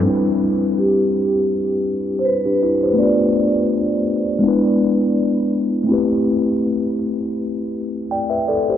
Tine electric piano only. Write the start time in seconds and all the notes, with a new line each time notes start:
0.00 G3 C4
0.05 D4 E4
0.10 B4
2.45 D4 G4
2.63 E4 B4
2.83 G4 C5
2.94 A3 B3
2.98 D4 F4
3.03 B4
4.39 G#3 B3
4.44 D4 E4
4.48 B4
5.84 A3 C4
5.89 E4 G4
5.93 B4
8.11 D5 G5
8.30 B4 E5
8.48 A4 D5
8.69 G4 C5